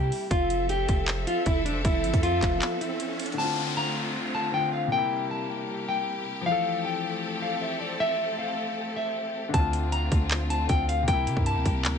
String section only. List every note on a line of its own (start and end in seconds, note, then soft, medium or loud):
0.00 0.29 C3 medium
0.00 0.29 G3 medium
0.00 0.29 A#3 medium
0.00 0.29 E4 medium
0.31 3.36 F3 medium
0.31 3.36 C4 medium
0.31 3.36 A4 medium
0.31 3.36 E5 medium
3.38 4.91 D3 medium
3.38 4.91 A3 medium
3.38 4.91 C4 medium
3.38 4.91 F4 medium
4.92 6.45 C3 medium
4.92 6.45 G3 medium
4.92 6.45 A#3 medium
4.92 9.50 G4 medium
6.46 9.51 A3 medium
6.46 9.51 C4 medium
6.46 9.51 A4 medium
9.54 11.06 D3 medium
9.54 11.06 A3 medium
9.54 11.06 C4 medium
9.54 11.06 F4 medium
11.08 11.98 C3 medium
11.08 11.98 G3 medium
11.08 11.98 A#3 medium
11.08 11.98 G4 medium